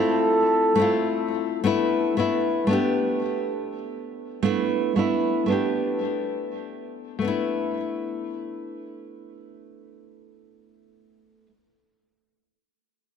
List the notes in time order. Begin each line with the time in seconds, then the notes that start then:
Already playing: A3 C4 E4 F4 A4
0.75 A3 C4
0.80 E4 F4
1.64 A3 B3 D4 E4
2.17 A3 B3 D4 E4
2.67 A3 B3 D4
2.73 G4
4.43 A3 B3 D4 E4
4.96 A3 B3 D4 E4
5.46 A3 B3
5.50 D4 G4
7.19 A3 B3
7.25 D4 E4